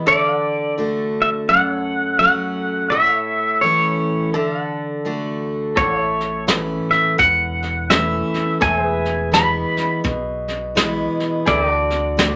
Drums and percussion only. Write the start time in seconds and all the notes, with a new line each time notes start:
5.77 kick, snare
6.20 snare
6.48 snare, hi-hat pedal
6.92 snare
7.19 kick, snare
7.62 snare
7.90 snare, hi-hat pedal
8.34 snare
8.62 kick, snare
9.05 snare
9.33 snare, hi-hat pedal
9.77 snare
10.05 kick, snare
10.48 snare
10.77 snare, hi-hat pedal
11.20 snare
11.47 kick, snare
11.90 snare
12.19 snare, hi-hat pedal